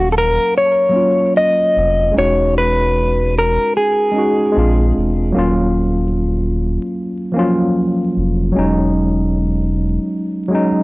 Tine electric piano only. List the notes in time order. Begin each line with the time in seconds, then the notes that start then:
Already playing: F#3 A#3 C#4 F5
0.89 F#3 A#3
0.93 C#4 F4
2.12 G#3 C#4
2.16 D#4 F#4
4.11 G#3 C#4
4.16 D#4 F#4
4.52 G#3 C4
4.56 D4 F4
5.32 F#3 A#3
5.36 C#4 F4
7.32 F3 A#3
7.36 F#3 C#4 F4
8.52 F#3 G#3 C#4
8.59 D#4
10.48 F#3 G#3
10.53 C#4 D#4